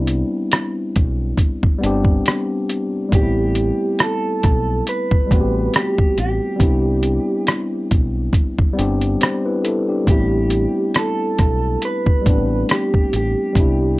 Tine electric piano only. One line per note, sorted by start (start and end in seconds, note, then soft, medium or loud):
0.00 0.99 G3 medium
0.00 1.00 B3 medium
0.00 1.01 C4 medium
0.00 1.02 D4 medium
0.00 1.06 E4 medium
1.78 2.84 G3 medium
1.78 2.85 B3 medium
1.78 2.86 C4 medium
1.85 2.87 D4 medium
1.85 2.88 G4 loud
3.09 4.47 G3 medium
3.09 4.48 A3 medium
3.09 4.49 B3 medium
3.14 4.50 C4 medium
3.14 3.22 D#4 medium
3.23 4.54 E4 medium
5.26 6.32 G3 medium
5.26 6.33 A3 medium
5.26 6.34 B3 medium
5.32 6.35 C4 medium
5.32 5.39 F#4 medium
5.40 6.39 G4 medium
6.56 7.94 G3 medium
6.56 7.96 B3 medium
6.56 7.96 C4 medium
6.61 7.97 D4 medium
6.61 7.98 E4 medium
8.73 9.79 G3 medium
8.73 9.80 B3 medium
8.73 9.81 C4 medium
8.78 9.21 D4 medium
8.78 9.21 G4 loud
9.21 9.45 G4 medium
9.21 9.45 C5 medium
9.46 9.64 E4 medium
9.46 9.63 B4 medium
9.64 9.88 E4 medium
9.64 9.88 A4 medium
9.89 10.30 D4 medium
9.89 10.30 G4 medium
10.05 11.43 G3 medium
10.05 11.44 A3 medium
10.05 11.44 B3 medium
10.10 11.45 C4 medium
10.10 11.46 E4 medium
12.21 13.27 G3 medium
12.21 13.28 A3 medium
12.21 13.29 B3 medium
12.27 13.30 C4 medium
12.27 13.31 D4 medium
13.52 14.00 G3 medium
13.52 14.00 B3 medium
13.52 14.00 C4 medium
13.58 14.00 D4 medium
13.58 14.00 E4 medium